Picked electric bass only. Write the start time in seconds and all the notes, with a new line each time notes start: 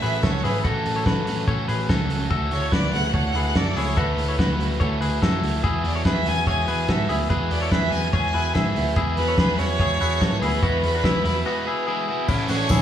0.03 A1
0.24 C#2
0.44 G#1
0.64 A1
0.86 A1
1.06 A1
1.27 A1
1.48 A1
1.68 A1
1.89 C#2
2.09 C#2
2.30 D2
2.51 D2
2.72 D2
2.93 D2
3.14 D2
3.34 D2
3.56 F#2
3.76 C#2
3.97 D2
4.17 D2
4.39 D2
4.59 D2
4.81 D2
5.01 D2
5.23 F#2
5.42 D2
5.64 E2
5.84 E2
6.05 E2
6.26 E2
6.47 E2
6.68 E2
6.89 G#2
7.10 D2
7.30 E2
7.51 E2
7.72 E2
7.92 E2
8.13 E2
8.34 E2
8.55 G#2
8.75 D2
8.96 E2
9.17 E2
9.38 E2
9.59 E2
9.80 E2
10.01 E2
10.21 G#2
10.42 D2
10.63 E2
10.83 E2
11.04 E2
11.24 E2
12.29 A1
12.49 A1
12.70 A1